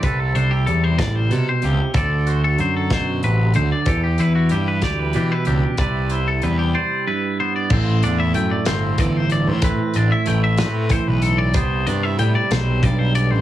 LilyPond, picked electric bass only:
\new Staff \with { instrumentName = "Picked electric bass" } { \clef bass \time 6/8 \key a \dorian \tempo 4. = 63 c,8 c,8 e,8 a,,8 c16 r16 des,16 r16 | d,4 fis,4 a,,8 d,16 r16 | e,8 e,8 g,8 d,8 e16 r16 des,16 r16 | c,4 e,8 r4. |
a,,8 e,8 fis,16 r16 g,,8 g,,8. a,16 | a,16 r16 a,,16 r16 a,,8 a,8 r16 b,,8. | c,8 g,8 a,16 r16 b,,8 b,,8. a,,16 | }